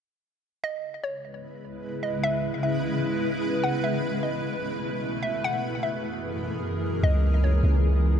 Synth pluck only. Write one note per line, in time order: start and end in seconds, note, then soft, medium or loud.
0.64 1.01 D#5 loud
1.04 1.99 C#5 medium
2.03 2.22 D#5 medium
2.23 2.61 E5 loud
2.63 3.59 E5 medium
3.64 3.82 F#5 medium
3.84 4.21 E5 medium
4.23 5.19 D#5 medium
5.23 5.42 E5 medium
5.44 5.81 F#5 loud
5.83 6.99 E5 medium
7.03 7.41 D#5 medium
7.44 8.20 C#5 medium